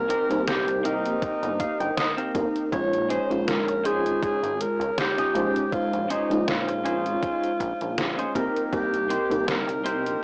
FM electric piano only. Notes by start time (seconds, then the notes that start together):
Already playing: A#3 C4 D#4 G4 A#4
0.29 A#3 C4 D#4 G4 C5
2.34 A#3 C4 D#4 G4 A#4
2.72 G#3 C#4 D#4 F4 C#5
3.29 G#3 C#4 D#4 F4
5.34 G#3 C#4 D#4 F4 C5
5.72 G#3 C#4 D#4 F4 C5
6.30 G#3 C#4 D#4 F4
8.35 A#3 C4 D#4 G4 A#4
8.72 A#3 C4 D#4 G4 A#4
9.29 C3 A#3 D#4 G4 A#4